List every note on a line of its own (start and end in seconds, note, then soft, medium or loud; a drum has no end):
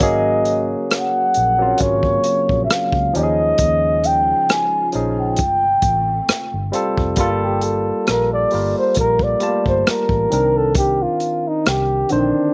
0.00 0.74 G#1 medium
0.00 5.35 C#3 medium
0.00 1.33 F#3 medium
0.00 3.11 F#3 medium
0.00 1.34 A#3 medium
0.00 3.11 A#3 medium
0.00 1.34 C#4 medium
0.00 1.35 G#4 medium
0.00 0.66 D#5 medium
0.00 kick loud
0.00 closed hi-hat medium
0.45 closed hi-hat medium
0.91 1.83 F#5 medium
0.91 cross-stick loud
0.91 closed hi-hat medium
1.34 1.73 A#1 medium
1.34 closed hi-hat medium
1.59 3.09 F#3 medium
1.59 3.10 A#3 medium
1.59 1.66 C4 medium
1.59 3.11 F4 medium
1.67 3.14 C#4 medium
1.78 2.17 G#1 medium
1.78 2.64 C#5 medium
1.78 kick medium
1.78 closed hi-hat medium
2.03 kick medium
2.24 closed hi-hat medium
2.49 2.66 A#1 medium
2.49 kick medium
2.64 2.73 E5 medium
2.70 3.15 F5 medium
2.70 cross-stick loud
2.70 closed hi-hat medium
2.92 3.10 C#2 medium
2.92 kick medium
3.13 3.52 D#2 medium
3.13 4.67 F3 medium
3.13 5.36 G#3 medium
3.13 4.68 C#4 medium
3.13 4.68 D#4 medium
3.13 7.13 F4 medium
3.13 3.23 G4 medium
3.13 4.08 D#5 loud
3.13 closed hi-hat medium
3.23 4.72 G#4 medium
3.58 4.32 D#2 medium
3.58 kick loud
3.58 closed hi-hat medium
4.04 4.53 G5 medium
4.04 closed hi-hat medium
4.49 4.91 G#5 medium
4.49 cross-stick loud
4.49 closed hi-hat medium
4.92 5.40 A#1 medium
4.92 5.38 F3 medium
4.92 5.39 C#4 medium
4.92 5.39 D#4 medium
4.92 5.40 G#4 medium
4.92 closed hi-hat medium
5.20 6.70 G5 loud
5.36 5.76 G1 medium
5.36 7.16 C3 medium
5.36 7.15 A3 medium
5.36 kick medium
5.36 closed hi-hat medium
5.82 6.20 A1 medium
5.82 kick medium
5.82 closed hi-hat medium
6.29 muted fingered electric bass stroke soft
6.29 cross-stick loud
6.29 closed hi-hat medium
6.54 6.70 G1 medium
6.72 7.11 G3 medium
6.72 7.11 C4 medium
6.72 7.12 F4 medium
6.72 7.13 A4 medium
6.72 closed hi-hat medium
6.98 7.14 F1 medium
6.98 kick medium
7.16 7.91 G1 medium
7.16 8.33 G3 medium
7.16 8.34 A#3 medium
7.16 7.30 F4 medium
7.16 8.34 F4 medium
7.16 kick loud
7.16 closed hi-hat medium
7.20 8.35 A4 medium
7.44 7.66 G4 medium
7.61 8.08 A4 medium
7.61 closed hi-hat medium
8.07 8.45 A#1 medium
8.07 8.31 A#4 medium
8.07 cross-stick medium
8.07 closed hi-hat medium
8.33 8.74 D5 medium
8.51 8.73 G1 medium
8.51 9.29 G3 medium
8.51 9.29 A#3 medium
8.51 9.30 F4 medium
8.51 9.30 A#4 medium
8.51 open hi-hat soft
8.78 8.96 C5 medium
8.95 9.34 A#1 medium
8.95 kick medium
8.95 closed hi-hat medium
8.99 9.25 A#4 medium
9.19 9.67 D5 medium
9.19 kick medium
9.40 10.18 G3 medium
9.40 9.48 A3 soft
9.40 10.19 F4 medium
9.40 10.19 A5 medium
9.40 closed hi-hat medium
9.48 10.22 A#3 medium
9.66 9.83 G1 medium
9.66 9.90 C5 medium
9.66 kick medium
9.87 10.58 A#4 medium
9.87 muted fingered electric bass stroke soft
9.87 cross-stick loud
9.87 closed hi-hat medium
10.09 10.27 A1 medium
10.09 kick medium
10.30 11.05 C2 medium
10.30 11.84 D#3 medium
10.30 11.84 C4 medium
10.30 11.85 D4 medium
10.30 11.85 A#4 medium
10.30 closed hi-hat medium
10.57 10.76 A4 medium
10.75 11.04 G4 medium
10.75 kick loud
10.75 closed hi-hat medium
11.02 11.49 F4 medium
11.20 closed hi-hat medium
11.48 11.69 D#4 medium
11.66 12.03 C2 medium
11.66 12.13 G4 medium
11.66 cross-stick loud
11.66 closed hi-hat medium
12.09 12.31 A#1 medium
12.09 12.17 D3 medium
12.09 12.54 C4 medium
12.09 12.54 D4 medium
12.09 12.54 C5 medium
12.09 closed hi-hat medium
12.16 12.54 D#3 medium